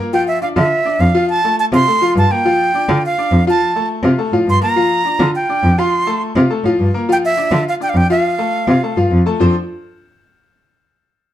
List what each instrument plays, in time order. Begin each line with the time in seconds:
0.00 grand piano A#3 A#4 A#5
0.13 grand piano F3 F4 F5, flute G5
0.28 flute E5
0.42 grand piano D4 D5 D6, flute F5
0.56 cello D3, grand piano F4 F5 F6, flute E5
0.85 grand piano D4 D5 D6
1.00 cello F2, flute F5
1.15 grand piano F3 F4 F5
1.29 flute A5
1.44 grand piano A3 A4 A5
1.59 flute A5
1.72 cello C3, grand piano F4 F5 F6, flute C6
1.87 grand piano A3 A4 A5
2.01 grand piano F3 F4 F5
2.15 cello G2, flute A5
2.30 grand piano A#3 A#4 A#5, flute G5
2.45 grand piano F3 F4 F5
2.74 grand piano D4 D5 D6
2.89 cello D3, grand piano F4 F5 F6
3.06 flute F5
3.18 grand piano D4 D5 D6
3.31 cello F2
3.47 grand piano F3 F4 F5, flute A5
3.75 grand piano A3 A4 A5
4.03 cello C3, grand piano F4 F5 F6
4.18 grand piano A3 A4 A5
4.32 cello A2, grand piano F3 F4 F5
4.47 cello G2, flute C6
4.61 grand piano A#3 A#4 A#5, flute A#5
4.76 grand piano F3 F4 F5
5.05 grand piano D4 D5 D6
5.19 cello D3, grand piano F4 F5 F6
5.36 flute G5
5.49 grand piano D4 D5 D6
5.63 cello F2
5.78 grand piano F3 F4 F5, flute C6
6.06 grand piano A3 A4 A5
6.36 cello C3, grand piano F4 F5 F6
6.50 grand piano A3 A4 A5
6.64 cello A2, grand piano F3 F4 F5
6.79 cello G2
6.94 grand piano A#3 A#4 A#5
7.09 grand piano F3 F4 F5, flute G5
7.25 flute E5
7.37 grand piano D4 D5 D6
7.51 cello D3, grand piano F4 F5 F6
7.69 flute F5
7.80 grand piano D4 D5 D6, flute G5
7.89 flute F5
7.94 cello F2, flute G5
8.10 grand piano F3 F4 F5, flute F5
8.38 grand piano A3 A4 A5
8.67 cello C3, grand piano F4 F5 F6
8.83 grand piano A3 A4 A5
8.97 cello G2, grand piano F3 F4 F5
9.11 cello F2
9.26 grand piano A3 A4 A5
9.40 cello F2, grand piano F3 C4 D4 F4 A4 C5